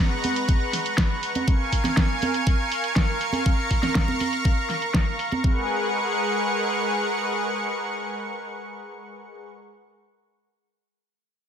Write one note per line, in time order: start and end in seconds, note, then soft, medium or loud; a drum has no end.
0.00 1.44 G#3 medium
0.00 1.44 B4 medium
0.00 1.44 F#5 medium
0.00 1.44 A#5 medium
0.00 1.44 C#6 medium
0.24 open hi-hat medium
0.24 high conga medium
0.36 closed hi-hat medium
0.49 kick loud
0.49 closed hi-hat soft
0.73 snare soft
0.73 open hi-hat medium
0.86 closed hi-hat medium
0.98 kick loud
0.98 snare loud
0.98 closed hi-hat soft
1.23 open hi-hat medium
1.35 closed hi-hat medium
1.35 high conga medium
1.48 5.41 A#4 medium
1.48 5.40 F5 medium
1.48 3.44 G#5 medium
1.48 5.41 C#6 medium
1.48 kick loud
1.48 closed hi-hat soft
1.72 kick medium
1.72 open hi-hat medium
1.84 snare soft
1.84 closed hi-hat medium
1.84 high conga medium
1.97 kick loud
1.97 snare loud
1.97 closed hi-hat soft
2.22 open hi-hat medium
2.22 high conga medium
2.34 closed hi-hat medium
2.47 kick loud
2.47 closed hi-hat medium
2.72 open hi-hat medium
2.84 closed hi-hat medium
2.96 kick loud
2.96 snare loud
2.96 closed hi-hat soft
3.21 open hi-hat medium
3.33 open hi-hat medium
3.33 high conga medium
3.46 5.42 A#5 medium
3.46 kick loud
3.46 closed hi-hat medium
3.71 kick medium
3.71 open hi-hat medium
3.83 snare soft
3.83 closed hi-hat medium
3.83 high conga medium
3.95 kick loud
3.95 snare loud
3.95 closed hi-hat soft
4.08 high conga medium
4.20 open hi-hat medium
4.20 high conga medium
4.33 closed hi-hat medium
4.45 kick loud
4.45 closed hi-hat soft
4.69 snare soft
4.69 open hi-hat medium
4.82 closed hi-hat medium
4.94 kick loud
4.94 snare loud
4.94 closed hi-hat medium
5.19 open hi-hat loud
5.32 closed hi-hat medium
5.32 high conga medium
5.44 9.51 G#3 medium
5.44 9.51 G#4 medium
5.44 9.51 A#4 medium
5.44 9.51 B4 medium
5.44 9.51 F#5 medium
5.44 9.51 C#6 medium
5.44 kick loud